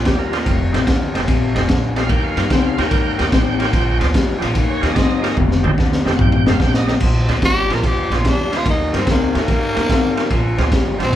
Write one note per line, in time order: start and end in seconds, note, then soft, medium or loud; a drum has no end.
0.05 0.45 D#2 medium
0.05 0.30 A#2 medium
0.05 0.31 G3 medium
0.05 0.19 G4 medium
0.05 kick medium
0.05 snare loud
0.05 ride medium
0.19 0.59 A#4 medium
0.32 0.45 A#2 medium
0.32 0.45 F3 medium
0.32 0.39 D4 medium
0.32 0.39 F4 medium
0.32 0.40 G#4 medium
0.32 0.40 C5 medium
0.32 snare soft
0.32 ride medium
0.46 0.73 F1 loud
0.46 0.71 F2 medium
0.46 0.71 C3 loud
0.46 kick medium
0.46 snare soft
0.46 ride medium
0.73 0.86 A1 medium
0.73 0.86 F2 medium
0.73 0.86 C3 medium
0.73 0.80 D#4 medium
0.73 0.80 G4 medium
0.73 0.81 A4 medium
0.73 0.81 C5 medium
0.73 snare soft
0.73 ride medium
0.87 1.14 D#2 medium
0.87 1.12 F2 medium
0.87 1.12 D3 medium
0.87 kick medium
0.87 snare loud
0.87 ride medium
1.14 1.27 F1 medium
1.14 1.26 F2 medium
1.14 1.26 C3 medium
1.14 1.21 D#4 medium
1.14 1.21 G4 medium
1.14 1.22 A4 medium
1.14 1.22 C5 medium
1.14 snare soft
1.14 ride medium
1.27 1.55 A#1 medium
1.27 1.53 F2 medium
1.27 1.53 C3 loud
1.27 kick medium
1.27 snare soft
1.27 ride medium
1.55 1.68 F1 medium
1.55 1.67 F2 medium
1.55 1.67 C3 medium
1.55 1.62 D#4 medium
1.55 1.62 G4 medium
1.55 1.62 A4 medium
1.55 1.63 C5 loud
1.55 snare soft
1.55 ride medium
1.68 2.08 A#1 medium
1.68 1.93 F2 medium
1.68 1.93 D3 loud
1.68 kick medium
1.68 snare loud
1.68 ride medium
1.96 2.08 F2 medium
1.96 2.08 C3 medium
1.96 2.03 D#4 medium
1.96 2.03 G4 medium
1.96 2.03 A4 medium
1.96 2.04 C5 medium
1.96 2.10 F5 loud
1.96 snare soft
1.96 ride medium
2.09 2.36 D#2 loud
2.09 2.34 D#3 medium
2.09 2.34 A#3 loud
2.09 2.23 G5 loud
2.09 kick medium
2.09 ride medium
2.24 2.37 F5 loud
2.37 2.50 G2 loud
2.37 2.49 D#3 medium
2.37 2.49 A#3 medium
2.37 2.44 F4 medium
2.37 2.44 G4 medium
2.37 2.44 A#4 medium
2.37 2.45 C#5 medium
2.37 2.51 F5 medium
2.37 snare soft
2.37 ride medium
2.50 2.77 C#2 medium
2.50 2.76 D#3 medium
2.50 2.76 C4 loud
2.50 2.65 G5 medium
2.50 kick medium
2.50 snare loud
2.50 ride medium
2.65 2.78 F5 loud
2.78 2.91 D#2 medium
2.78 2.90 D#3 medium
2.78 2.91 A#3 medium
2.78 2.85 F4 medium
2.78 2.85 G4 medium
2.78 3.18 A#4 medium
2.78 2.86 C#5 medium
2.78 3.98 G5 loud
2.78 snare soft
2.78 ride medium
2.91 3.18 G#2 medium
2.91 3.16 D#3 medium
2.91 3.17 A#3 medium
2.91 kick medium
2.91 snare soft
2.91 ride medium
3.18 3.32 D#2 medium
3.18 3.31 D#3 medium
3.18 3.31 A#3 medium
3.18 3.25 F4 medium
3.18 3.26 G4 medium
3.18 3.26 A#4 medium
3.18 3.26 D#5 medium
3.18 snare soft
3.18 ride medium
3.32 3.72 A1 medium
3.32 3.58 D#3 medium
3.32 3.58 C4 loud
3.32 kick medium
3.32 snare loud
3.32 ride medium
3.59 3.72 D#3 medium
3.59 3.72 A#3 medium
3.59 3.66 F4 medium
3.59 3.67 G4 medium
3.59 3.67 A#4 medium
3.59 3.67 C#5 loud
3.59 snare soft
3.59 ride medium
3.73 4.00 A#1 loud
3.73 3.98 A#2 medium
3.73 3.98 F3 medium
3.73 kick medium
3.73 snare soft
3.73 ride medium
4.00 4.14 D2 medium
4.00 4.13 A#2 medium
4.00 4.13 F3 medium
4.00 4.07 F4 loud
4.00 4.07 G#4 medium
4.00 4.08 C5 medium
4.00 4.08 D5 loud
4.00 snare soft
4.00 ride medium
4.14 4.41 G#1 medium
4.14 4.39 A#2 medium
4.14 4.39 G3 loud
4.14 kick medium
4.14 snare loud
4.14 ride medium
4.38 4.57 A#1 loud
4.38 4.54 A#2 medium
4.38 4.54 F3 medium
4.38 4.48 F4 medium
4.38 4.42 G4 medium
4.38 4.48 G#4 medium
4.38 4.49 C5 medium
4.38 ride medium
4.43 4.49 D5 medium
4.43 snare soft
4.55 4.82 D#2 medium
4.55 4.80 D#3 medium
4.55 4.80 A#3 loud
4.55 kick medium
4.55 snare soft
4.55 ride medium
4.70 4.82 C#5 loud
4.81 4.96 D#2 medium
4.81 4.94 D#3 medium
4.81 4.95 A#3 medium
4.81 4.89 F4 medium
4.81 4.89 G4 medium
4.81 4.89 A#4 medium
4.81 4.90 C#5 medium
4.81 4.96 D#5 loud
4.81 snare soft
4.81 ride medium
4.94 5.35 G#2 loud
4.94 5.21 D#3 medium
4.94 5.21 C4 loud
4.94 4.97 D5 medium
4.94 kick medium
4.94 snare loud
4.94 ride medium
4.98 5.37 D#5 loud
5.22 5.36 D#3 medium
5.22 5.36 A#3 medium
5.22 5.30 F4 medium
5.22 5.30 G4 medium
5.22 5.30 A#4 medium
5.22 5.31 C#5 medium
5.22 snare soft
5.22 ride medium
5.36 5.64 F1 loud
5.36 5.62 F2 medium
5.36 5.62 C3 loud
5.36 kick medium
5.36 high tom medium
5.51 snare medium
5.63 5.78 A1 medium
5.63 5.76 F2 medium
5.63 5.76 C3 medium
5.63 5.71 D#4 medium
5.63 5.71 G4 loud
5.63 5.71 A4 medium
5.63 5.71 C5 loud
5.63 high tom medium
5.77 6.05 D#2 medium
5.77 6.03 F2 medium
5.77 6.03 D3 loud
5.77 kick medium
5.77 snare medium
5.92 snare medium
6.05 6.18 F1 medium
6.05 6.17 F2 medium
6.05 6.18 C3 medium
6.05 6.12 D#4 loud
6.05 6.12 G4 medium
6.05 6.13 A4 medium
6.05 6.13 C5 medium
6.05 snare medium
6.16 6.46 A#1 medium
6.16 6.44 F2 loud
6.16 6.44 C3 medium
6.16 6.20 F#5 medium
6.16 kick medium
6.16 mid tom medium
6.21 6.47 G5 loud
6.32 mid tom medium
6.46 6.59 F1 medium
6.46 6.58 F2 medium
6.46 6.59 C3 medium
6.46 6.53 D#4 medium
6.46 6.53 G4 medium
6.46 6.54 A4 medium
6.46 6.54 C5 loud
6.46 6.61 F5 loud
6.46 snare loud
6.59 6.99 A#1 medium
6.59 6.85 F2 medium
6.59 6.85 D3 loud
6.59 6.74 G5 loud
6.59 kick medium
6.59 snare medium
6.74 6.88 D#5 loud
6.74 snare loud
6.87 7.00 F2 medium
6.87 7.00 C3 medium
6.87 6.94 D#4 medium
6.87 6.94 G4 medium
6.87 6.95 A4 medium
6.87 6.95 D#5 medium
6.87 snare medium
7.00 7.28 A#1 medium
7.00 7.26 A#2 medium
7.00 7.26 F3 medium
7.00 kick medium
7.00 crash loud
7.28 7.41 D2 medium
7.28 7.41 A#2 medium
7.28 7.41 F3 medium
7.28 7.35 D4 medium
7.28 7.36 F4 medium
7.28 7.36 G#4 medium
7.28 7.36 C5 loud
7.28 snare soft
7.28 ride medium
7.42 7.69 G#1 medium
7.42 7.67 A#2 medium
7.42 7.67 G3 loud
7.42 7.75 G4 loud
7.42 kick medium
7.42 snare loud
7.42 ride medium
7.69 7.82 A#1 medium
7.69 7.82 A#2 medium
7.69 7.82 F3 medium
7.69 7.76 D4 medium
7.69 7.77 F4 medium
7.69 7.77 G#4 medium
7.69 7.77 C5 medium
7.69 snare soft
7.69 ride medium
7.73 7.88 A#4 medium
7.83 8.10 D#2 medium
7.83 8.08 A#2 medium
7.83 8.09 F3 medium
7.83 8.17 G4 medium
7.83 kick medium
7.83 snare soft
7.83 ride medium
8.10 8.23 A#1 medium
8.10 8.23 A#2 medium
8.10 8.24 F3 medium
8.10 8.18 D4 medium
8.10 8.18 F4 medium
8.10 8.18 G#4 medium
8.10 8.19 C5 medium
8.10 snare soft
8.10 ride medium
8.15 8.30 F4 medium
8.24 8.64 D#2 medium
8.24 8.50 A#2 medium
8.24 8.50 G3 medium
8.24 8.58 D4 medium
8.24 kick medium
8.24 snare loud
8.24 ride medium
8.51 8.64 A#2 medium
8.51 8.64 F3 medium
8.51 8.58 D4 medium
8.51 8.59 F4 medium
8.51 8.59 G#4 medium
8.51 8.59 C5 medium
8.51 snare soft
8.51 ride medium
8.56 8.67 F4 loud
8.65 8.92 D#2 loud
8.65 8.91 D#3 medium
8.65 8.91 A#3 medium
8.65 kick medium
8.65 snare soft
8.65 ride medium
8.70 8.95 D#4 medium
8.93 9.06 G2 medium
8.93 9.06 D#3 medium
8.93 9.06 A#3 medium
8.93 9.00 C#4 medium
8.93 9.00 F4 medium
8.93 9.00 G4 medium
8.93 9.01 A#4 medium
8.93 snare soft
8.93 ride medium
8.98 9.09 C4 medium
9.07 9.34 C#2 medium
9.07 9.32 D#3 medium
9.07 9.32 C4 loud
9.07 kick medium
9.07 snare loud
9.07 ride medium
9.11 9.36 A#3 medium
9.34 9.48 D#2 medium
9.34 9.47 D#3 medium
9.34 9.47 A#3 medium
9.34 9.41 C#4 medium
9.34 9.41 F4 medium
9.34 9.42 G4 medium
9.34 9.42 A#4 medium
9.34 snare soft
9.34 ride medium
9.38 10.56 A#3 loud
9.48 9.75 G#2 medium
9.48 9.73 D#3 medium
9.48 9.74 A#3 medium
9.48 kick medium
9.48 snare soft
9.48 ride medium
9.74 9.89 D#2 medium
9.74 9.88 D#3 medium
9.74 9.88 A#3 medium
9.74 9.82 C#4 medium
9.74 9.82 F4 medium
9.74 9.83 G4 medium
9.74 9.83 A#4 medium
9.74 snare soft
9.74 ride medium
9.89 10.29 G#2 medium
9.89 10.14 D#3 medium
9.89 10.15 C4 medium
9.89 kick medium
9.89 snare loud
9.89 ride medium
10.16 10.29 D#3 medium
10.16 10.29 A#3 medium
10.16 10.23 C#4 medium
10.16 10.24 F4 medium
10.16 10.24 G4 medium
10.16 10.24 A#4 medium
10.16 snare soft
10.16 ride medium
10.30 10.57 A#1 medium
10.30 10.56 A#2 medium
10.30 10.56 F3 medium
10.30 kick medium
10.30 snare soft
10.30 ride medium
10.57 10.71 D2 medium
10.57 10.70 A#2 medium
10.57 10.70 F3 medium
10.57 10.64 C4 loud
10.57 10.65 D4 medium
10.57 10.65 F4 medium
10.57 10.65 G#4 loud
10.57 snare soft
10.57 ride medium
10.72 10.98 G#1 medium
10.72 10.97 A#2 medium
10.72 10.97 G3 medium
10.72 kick medium
10.72 snare loud
10.72 ride medium
10.99 11.12 A#1 medium
10.99 11.11 A#2 medium
10.99 11.12 F3 medium
10.99 11.06 C4 medium
10.99 11.06 D4 medium
10.99 11.06 F4 medium
10.99 11.07 G4 medium
10.99 snare soft
10.99 ride medium
11.03 11.14 C4 loud
11.13 11.16 A#2 medium